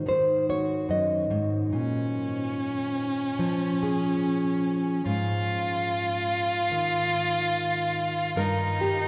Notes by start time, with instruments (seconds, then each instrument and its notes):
Already playing: steel-string acoustic guitar G#2 D#4 F#4
0.06 steel-string acoustic guitar D#3, nylon-string guitar C5
0.49 steel-string acoustic guitar F#4, nylon-string guitar C#5
0.89 steel-string acoustic guitar F#2, nylon-string guitar D#5
1.30 steel-string acoustic guitar G#2
1.72 steel-string acoustic guitar A#2, violin C#4
3.39 steel-string acoustic guitar F3
3.83 steel-string acoustic guitar G#4
5.06 steel-string acoustic guitar G#2, violin F4
6.72 steel-string acoustic guitar D#3
8.36 steel-string acoustic guitar G2, violin D#4, nylon-string guitar A#4
8.81 nylon-string guitar G4